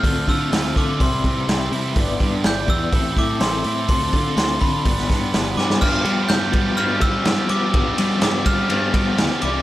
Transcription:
<<
  \new Staff \with { instrumentName = "Glockenspiel" } { \time 4/4 \key g \mixolydian \tempo 4 = 124 f'''8 e'''4 d'''8 c'''4. r8 | r4 g'''8 e'''4 d'''8 c'''4 | c'''4 c'''8 b''2 d'''8 | f'''4 g'''4 f'''8 e'''4 d'''8~ |
d'''4 d'''8 f'''2 d'''8 | }
  \new Staff \with { instrumentName = "Distorted electric guitar" } { \time 4/4 \key g \mixolydian <d a d' f'>8 <a d' f'>8 <d a d' f'>8 <a d' f'>8 <c e g c' e'>4 <e g c' e'>8 <g c' e'>8 | <g, d g b d' g'>8 <g b d' g'>8 <g b d' g'>8 <g b d' g'>8 <a, e c' e' a'>4 <e c' e' a'>8 <c' e' a'>8 | <d d' f' a'>8 <d' f' a'>8 <d d' f' a'>8 <d' f' a'>8 <g b d' b'>4 <g b d' b'>8 <b d' b'>8 | <g b d' g'>8 <g b d' g'>8 <g b d' g'>8 <g b d' g'>8 <g b d' g'>8 <g b d' g'>8 <g b d' g'>8 <g b d' g'>8 |
<g b d' g'>8 <g b d' g'>8 <g b d' g'>8 <g b d' g'>8 <g b d' g'>8 <g b d' g'>8 <g b d' g'>8 <c e g e' g'>8 | }
  \new Staff \with { instrumentName = "Clean electric guitar" } { \time 4/4 \key g \mixolydian <d a c' f' a'>8 <c' f' a'>8 <a c' f' a'>4 <c g c' e' g'>8 <c' e' g'>8 <c g c' e' g'>8 <c' e' g'>8 | <g b e' b' d''>8 <e' b' d''>8 <b e' b' d''>4 <a c' e' a'>8 <c' e' a'>8 <a c' e' a'>8 <c' e' a'>8 | <d a c' f' a'>8 <c' f' a'>8 <a c' f' a'>4 <g b d' g'>8 <b d' g'>8 <g b d' g'>8 <b d' g'>8 | <g, d f b f'>8 <g, d f b f'>8 <g, d f b f'>8 <g, d f b f'>8 <g, d f b f'>8 <g, d f b f'>8 <g, d f b f'>8 <g, d f b f'>8 |
<g, d f b f'>8 <g, d f b f'>8 <g, d f b f'>8 <g, d f b f'>8 <g, d f b f'>8 <g, d f b f'>8 <g, d f b f'>8 <c e g d' e'>8 | }
  \new Staff \with { instrumentName = "Picked electric bass" } { \clef bass \time 4/4 \key g \mixolydian d,8 d8 d,8 d8 c,8 c8 c,8 c8 | g,,8 g,8 g,,8 e,8 a,,8 a,8 a,,8 a,8 | d,8 d8 d,8 d8 g,,8 g,8 g,,8 g,8 | g,8 g8 g,8 g8 g,8 g8 g,16 r16 g8 |
g,8 g8 g,8 g8 g,8 g8 d,16 r16 c,8 | }
  \new DrumStaff \with { instrumentName = "Drums" } \drummode { \time 4/4 <hho bd>8 <hho bd>8 <hho sn>8 <hho bd>8 <hho bd>8 <hho bd>8 <hho sn>8 hho8 | <hho bd>8 <hho bd>8 <hho sn>8 <hho bd>8 <hho bd>8 <hho bd>8 <hho sn>8 hho8 | <hho bd>8 <hho bd>8 <hho sn>8 <hho bd>8 <hho bd>16 sn16 <hho bd sn>8 <hho sn>8 sn16 sn16 | <cymc bd>8 cymr8 <cymr sn>8 <bd cymr>8 cymr8 <bd cymr>8 <cymr sn>8 cymr8 |
<bd cymr>8 cymr8 <cymr sn>8 <bd cymr>8 cymr8 <bd cymr>8 <cymr sn>8 cymr8 | }
>>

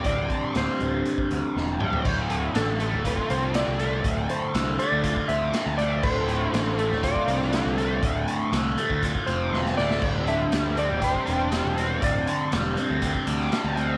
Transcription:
<<
  \new Staff \with { instrumentName = "Electric slide guitar" } { \time 4/4 \key d \minor \tempo 4 = 120 d''4 c''2~ c''8 r8 | r4 a'4 b'8 c''8 d''4 | r8 c''4 d''4 e''4 d''8 | c''2 d''2~ |
d''8 r2 c''4 d''8~ | d''8 e''4 d''8 c''2 | d''2~ d''8 r4. | }
  \new Staff \with { instrumentName = "Overdriven electric guitar" } { \clef bass \time 4/4 \key d \minor <g, d g c' d' g'>2.~ <g, d g c' d' g'>8 <g, d g c' d' g'>8 | d,8 a,8 d8 a8 f'8 c'8 d8 a8 | d,8 a,8 d8 a8 f'8 c'8 d8 a8 | d,8 a,8 d8 a8 f'8 c'8 d8 a8 |
d,8 a,8 d8 a8 f'8 c'8 d8 a8 | g,8 d8 g8 c'8 g'8 d'8 g8 c'8 | g,8 d8 g8 c'8 g'8 d'8 g8 c'8 | }
  \new Staff \with { instrumentName = "Picked electric bass" } { \clef bass \time 4/4 \key d \minor d,,8 r8 d,,16 r16 d,,8 r8 d,16 r16 e,,8 d,,8 | d,,4 a,,8. d,,8 r16 c,8. c,8. | d,,8 r8 c,8 r16 d,8 r16 d,8 r16 d,8. | d,,4 a,,8. d,,8 r16 c,8. c,8. |
d,,8 r8 c,8 r16 d,8 r16 f,,8 e,,8 d,,8 | d,,4 d,8. d,,8 r16 e,,8. e,,8. | d,,8 r8 e,,8 r16 d,8 r16 d,8 r16 d,8. | }
  \new DrumStaff \with { instrumentName = "Drums" } \drummode { \time 4/4 <hh bd>8 <hh bd>8 <hh sn>16 sn16 hh8 hh16 bd16 hh8 sn8 toml16 tomfh16 | <cymc bd>8 hh8 <hh sn>8 hh8 <hh bd>16 bd16 hh8 <hh sn>8 hh8 | <hh bd>8 hh8 <hh sn>8 hh8 <hh bd>16 bd16 hh8 <hh sn>8 hh8 | <cymc bd>8 hh8 <hh sn>8 hh16 sn16 <hh bd>16 bd16 hh16 sn16 <hh sn>8 hh8 |
<hh bd>8 hh8 <hh sn>8 hh16 bd16 <hh bd>16 bd16 hh8 sn16 sn16 sn16 sn16 | <cymc bd>8 hh8 <hh sn>8 hh8 <hh bd>16 bd16 hh8 <hh sn>8 hh8 | <hh bd>8 hh8 <hh sn>8 hh8 <hh bd>16 bd16 hh16 sn16 <hh sn>8 hh8 | }
>>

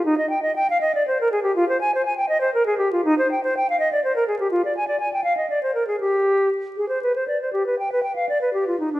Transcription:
\new Staff \with { instrumentName = "Flute" } { \time 12/8 \key g \phrygian \tempo 4. = 80 ees'16 ees''16 g''16 ees''16 g''16 f''16 ees''16 d''16 c''16 bes'16 aes'16 g'16 f'16 c''16 aes''16 c''16 aes''16 g''16 ees''16 c''16 bes'16 aes'16 g'16 f'16 | ees'16 c''16 g''16 c''16 g''16 f''16 ees''16 d''16 c''16 bes'16 aes'16 g'16 f'16 d''16 aes''16 d''16 aes''16 g''16 f''16 ees''16 d''16 c''16 bes'16 aes'16 | g'4. aes'16 c''16 b'16 c''16 d''16 c''16 g'16 b'16 g''16 b'16 g''16 f''16 d''16 b'16 g'16 f'16 ees'16 d'16 | }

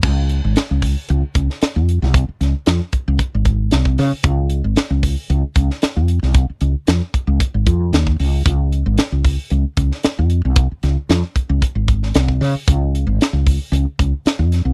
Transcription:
<<
  \new Staff \with { instrumentName = "Fretless electric bass" } { \clef bass \time 4/4 \key des \major \tempo 4 = 114 des,8. aes,,16 r16 des,8 r16 des,16 r16 des,16 r8 f,8 c,16~ | c,16 r16 des,16 r16 f,16 r8 des,16 r16 aes,,8. c,8 des16 r16 | des,8. aes,,16 r16 des,8 r16 des,16 r16 des,16 r8 f,8 c,16~ | c,16 r16 des,16 r16 f,16 r8 des,16 r16 aes,,16 f,8 ees,8 des,8 |
des,8. aes,,16 r16 des,8 r16 des,16 r16 des,16 r8 f,8 c,16~ | c,16 r16 des,16 r16 f,16 r8 des,16 r16 aes,,8. c,8 des16 r16 | des,8. aes,,16 r16 des,8 r16 des,16 r16 des,16 r8 f,8 c,16 | }
  \new DrumStaff \with { instrumentName = "Drums" } \drummode { \time 4/4 <cymc bd>8 hh8 <hh sn>8 <hho bd>8 hh8 <hh bd>16 sn16 <hh sn>8 hh16 sn16 | <hh bd>8 <hh sn>8 <hh sn>8 <hh bd>8 <hh bd>8 <hh bd>8 <hh sn>16 bd16 <hho sn>8 | <hh bd>8 hh8 <hh sn>8 <hho bd>8 hh8 <hh bd>16 sn16 <hh sn>8 hh16 sn16 | <hh bd>8 hh8 <hh sn>8 <hh bd>8 <hh bd>8 <hh bd>8 <hh sn>16 bd16 hho8 |
<hh bd>8 hh8 <hh sn>8 <hho bd>8 hh8 <hh bd>16 sn16 <hh sn>8 hh8 | <hh bd>8 <hh sn>8 <hh sn>8 <hh bd>8 <hh bd>8 <hh bd>16 sn16 <hh sn>16 bd16 <hho sn>8 | <hh bd>8 hh8 <hh sn>8 <hho bd>8 hh8 <hh bd>8 <hh sn>8 <hh sn>8 | }
>>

